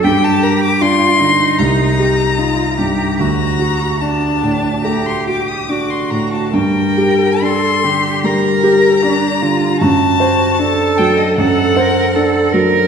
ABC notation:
X:1
M:4/4
L:1/16
Q:1/4=76
K:Gm
V:1 name="Violin"
g a b d' c'4 b8 | b4 a4 b c' d' e' d' c' b a | g4 c'4 b8 | a6 g e ^f6 z2 |]
V:2 name="Cello"
G4 F2 E6 F2 G2 | ^F4 D4 G4 F4 | B4 A2 G2 B4 D2 F2 | ^F4 A4 A2 B2 A2 B2 |]
V:3 name="Grand piano"
G,,2 B2 D2 D,2 C,,2 G2 E2 G,,2 | D,,2 ^F2 D2 A,,2 A,2 F2 D2 A,,2 | G,,2 G2 D2 D,2 G,2 G2 D2 D,2 | ^F,,2 c2 D2 ^F,2 F,,2 c2 D2 F,2 |]